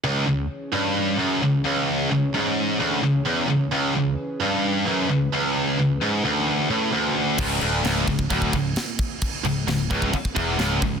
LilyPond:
<<
  \new Staff \with { instrumentName = "Analog synth pad" } { \time 4/4 \key cis \minor \tempo 4 = 131 << { cis''1~ | cis''1 | b'1~ | b'1 |
r1 | r1 | } \\ { <e cis' gis'>1~ | <e cis' gis'>1~ | <e cis' gis'>1~ | <e cis' gis'>1 |
r1 | r1 | } >> }
  \new Staff \with { instrumentName = "Distorted electric guitar" } { \clef bass \time 4/4 \key cis \minor cis,8 cis,8 r8 g,4 fis,8 cis,8 cis,8~ | cis,8 cis,8 gis,4 d,8 cis,8 e,8 cis,8 | cis,8 cis,8 r8 g,4 fis,8 cis,8 cis,8~ | cis,8 cis,8 gis,8 d,4 a,8 d,4 |
cis,8 d,8 cis,8 cis,8 d,8 cis,8 r4 | r8 cis,8 cis,8 cis,8 r8 e,8 cis,8 cis,8 | }
  \new Staff \with { instrumentName = "Distorted electric guitar" } { \clef bass \time 4/4 \key cis \minor cis,8 cis,8 r8 g,4 fis,8 cis,8 cis,8~ | cis,8 cis,8 gis,4 d,8 cis,8 e,8 cis,8 | cis,8 cis,8 r8 g,4 fis,8 cis,8 cis,8~ | cis,8 cis,8 gis,8 d,4 a,8 d,4 |
cis,8 d,8 cis,8 cis,8 d,8 cis,8 r4 | r8 cis,8 cis,8 cis,8 r8 e,8 cis,8 cis,8 | }
  \new Staff \with { instrumentName = "Distorted electric guitar" } { \clef bass \time 4/4 \key cis \minor r1 | r1 | r1 | r1 |
cis,8 d,8 cis,8 cis,8 d,8 cis,8 r4 | r8 cis,8 cis,8 cis,8 r8 e,8 cis,8 cis,8 | }
  \new Staff \with { instrumentName = "Picked electric bass" } { \clef bass \time 4/4 \key cis \minor r1 | r1 | r1 | r1 |
cis,,8 d,,8 cis,,8 cis,,8 d,,8 cis,,8 r4 | r8 cis,,8 cis,,8 cis,,8 r8 e,,8 cis,,8 cis,,8 | }
  \new DrumStaff \with { instrumentName = "Drums" } \drummode { \time 4/4 r4 r4 r4 r4 | r4 r4 r4 r4 | r4 r4 r4 r4 | r4 r4 r4 r4 |
<cymc bd>8 cymc8 <cymc sn>8 <cymc bd>16 bd16 <cymc bd>16 bd16 <cymc bd>8 <cymc sn>8 <cymc bd>8 | <cymc bd>8 cymc8 <cymc sn>8 <cymc bd>16 bd16 <cymc bd>16 bd16 <cymc bd>8 <cymc sn>8 <cymc bd>8 | }
>>